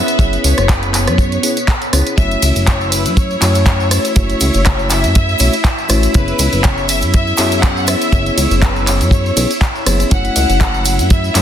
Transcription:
Already playing: tine electric piano B3 C#4 E4 G#4 C#5, string machine B3 B4, violin section E5
0.08 closed hi-hat, tambourine
0.19 analog synth bass F#1, tine electric piano B3 C#4 E4 G#4 C#5, kick, closed hi-hat, tambourine
0.33 closed hi-hat, tambourine
0.44 analog synth bass C#2, violin section C#5, open hi-hat, tambourine
0.58 analog synth bass F#1, cross-stick, closed hi-hat, tambourine
0.69 violin section B4, kick, clap, closed hi-hat, tambourine
0.83 closed hi-hat, tambourine
0.93 violin section C#5, clap, open hi-hat, tambourine
1.08 analog synth bass F#2, cross-stick, closed hi-hat, tambourine
1.18 kick, closed hi-hat, tambourine
1.32 closed hi-hat, tambourine
1.43 tine electric piano B3 C#4 E4 G#4 C#5, open hi-hat, tambourine
1.57 closed hi-hat, tambourine
1.68 kick, clap, closed hi-hat, tambourine
1.82 closed hi-hat, tambourine
1.93 analog synth bass C#2, tine electric piano B3 C#4 E4 G#4 C#5, cross-stick, open hi-hat, tambourine
2.07 closed hi-hat, tambourine
2.17 analog synth bass F#1, tine electric piano A3 C#4 E4 F#4 C#5, string machine E4 E5, violin section E5, kick, closed hi-hat, tambourine, shaker
2.31 closed hi-hat, tambourine
2.42 analog synth bass C#2, open hi-hat, ride, tambourine, shaker
2.56 analog synth bass F#1, closed hi-hat, tambourine, shaker
2.67 violin section C#5, kick, clap, closed hi-hat, tambourine, shaker
2.81 tambourine
2.92 violin section B4, open hi-hat, ride, tambourine, shaker
3.06 analog synth bass F#2, closed hi-hat, tambourine, shaker
3.17 violin section C#5, kick, closed hi-hat, tambourine, shaker
3.31 tambourine
3.40 analog synth bass F#2, tine electric piano A3 C#4 E4 F#4 C#5, clap, open hi-hat, ride, tambourine, shaker
3.55 closed hi-hat, tambourine, shaker
3.66 kick, clap, closed hi-hat, tambourine, shaker
3.80 tambourine
3.91 cross-stick, open hi-hat, ride, tambourine, shaker
4.05 closed hi-hat, tambourine, shaker
4.15 analog synth bass F#1, tine electric piano A3 C#4 E4 F#4 C#5, violin section C#5, kick, closed hi-hat, tambourine, shaker
4.30 closed hi-hat, tambourine
4.40 analog synth bass C#2, open hi-hat, ride, tambourine, shaker
4.53 analog synth bass F#1, closed hi-hat, tambourine, shaker
4.66 kick, clap, closed hi-hat, tambourine, shaker
4.79 tambourine
4.90 violin section E5, clap, open hi-hat, ride, tambourine, shaker
5.04 analog synth bass F#2, closed hi-hat, tambourine, shaker
5.15 kick, closed hi-hat, tambourine, shaker
5.29 tambourine
5.38 analog synth bass B1, tine electric piano A3 C#4 E4 F#4 C#5, open hi-hat, ride, tambourine, shaker
5.52 closed hi-hat, tambourine, shaker
5.64 kick, clap, closed hi-hat, tambourine, shaker
5.78 tambourine
5.89 analog synth bass A1, tine electric piano A3 C#4 E4 F#4 C#5, cross-stick, open hi-hat, ride, tambourine, shaker
6.03 closed hi-hat, tambourine, shaker
6.13 analog synth bass F#1, tine electric piano B3 C#4 E4 G#4 C#5, violin section B4, kick, closed hi-hat, tambourine, shaker
6.28 closed hi-hat, tambourine
6.39 analog synth bass C#2, open hi-hat, ride, tambourine, shaker
6.53 analog synth bass F#1, closed hi-hat, tambourine, shaker
6.63 violin section C#5, kick, clap, closed hi-hat, tambourine, shaker
6.78 tambourine
6.88 violin section E5, open hi-hat, ride, tambourine, shaker
7.01 analog synth bass F#2, closed hi-hat, tambourine, shaker
7.13 violin section E5, kick, closed hi-hat, tambourine, shaker
7.27 tambourine
7.37 analog synth bass F#2, tine electric piano B3 C#4 E4 G#4 C#5, clap, open hi-hat, ride, tambourine, shaker
7.52 closed hi-hat, tambourine, shaker
7.63 violin section F#5, kick, clap, closed hi-hat, tambourine, shaker
7.77 tambourine
7.87 violin section E5, cross-stick, open hi-hat, ride, tambourine, shaker
8.01 closed hi-hat, tambourine, shaker
8.12 analog synth bass F#1, tine electric piano B3 C#4 E4 G#4 C#5, kick, closed hi-hat, tambourine, shaker
8.26 closed hi-hat, tambourine
8.37 analog synth bass C#2, violin section C#5, open hi-hat, ride, tambourine, shaker
8.51 analog synth bass F#1, closed hi-hat, tambourine, shaker
8.62 violin section B4, kick, clap, closed hi-hat, tambourine, shaker
8.76 tambourine
8.87 violin section C#5, clap, open hi-hat, ride, tambourine, shaker
9.01 analog synth bass F#2, closed hi-hat, tambourine, shaker
9.11 kick, closed hi-hat, tambourine, shaker
9.26 tambourine
9.36 analog synth bass B1, tine electric piano B3 C#4 E4 G#4 C#5, open hi-hat, ride, tambourine, shaker
9.51 closed hi-hat, tambourine, shaker
9.61 kick, clap, closed hi-hat, shaker
9.75 tambourine
9.86 analog synth bass F#1, tine electric piano B3 C#4 E4 G#4 C#5, cross-stick, open hi-hat, ride, tambourine, shaker
10.00 closed hi-hat, tambourine, shaker
10.10 analog synth bass F#1, tine electric piano A3 C#4 E4 F#4 C#5, string machine E4 E5, violin section F#5, kick, closed hi-hat, tambourine, shaker
10.25 closed hi-hat, tambourine
10.36 analog synth bass C#2, open hi-hat, ride, tambourine, shaker
10.49 analog synth bass F#1, closed hi-hat, tambourine, shaker
10.61 kick, clap, closed hi-hat, tambourine, shaker
10.74 tambourine
10.85 open hi-hat, ride, tambourine, shaker
10.99 analog synth bass F#2, closed hi-hat, tambourine, shaker
11.10 violin section E5, kick, closed hi-hat, tambourine, shaker
11.24 tambourine
11.34 analog synth bass F#2, tine electric piano A3 C#4 E4 F#4 C#5, clap, open hi-hat, ride, tambourine, shaker

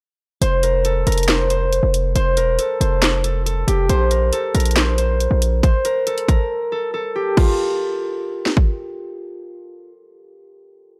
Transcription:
0.42 808-style bass F1, harp C5, closed hi-hat
0.63 harp A#4, closed hi-hat
0.85 harp A4, closed hi-hat
1.07 808-style bass F1, harp A#4, closed hi-hat
1.12 closed hi-hat
1.18 closed hi-hat
1.23 closed hi-hat
1.28 harp C5, snare, clap, closed hi-hat
1.50 harp C5, closed hi-hat
1.73 closed hi-hat
1.83 808-style bass F1
1.94 closed hi-hat
2.15 808-style bass F1, harp C5, closed hi-hat
2.37 808-style bass E1, harp A#4, closed hi-hat
2.59 harp A4, closed hi-hat
2.81 808-style bass F1, harp C5, closed hi-hat
3.02 snare, clap, closed hi-hat
3.24 harp A4, closed hi-hat
3.46 harp A4, closed hi-hat
3.68 808-style bass F1, harp G4, closed hi-hat
3.89 808-style bass A#1, harp C5, closed hi-hat
4.11 harp A#4, closed hi-hat
4.33 harp A4, closed hi-hat
4.55 808-style bass A#1, harp A#4, closed hi-hat
4.60 closed hi-hat
4.65 closed hi-hat
4.71 closed hi-hat
4.76 harp C5, snare, clap, closed hi-hat
4.98 harp C5, closed hi-hat
5.20 closed hi-hat
5.31 808-style bass A#1
5.42 closed hi-hat
5.63 harp C5, kick, closed hi-hat
5.85 harp A#4, closed hi-hat
6.07 harp A4, closed hi-hat
6.18 closed hi-hat
6.28 harp A#4, kick, closed hi-hat
6.72 harp A4
6.94 harp A4
7.16 harp G4
7.37 harp F4, kick, crash
8.46 snare
8.57 kick

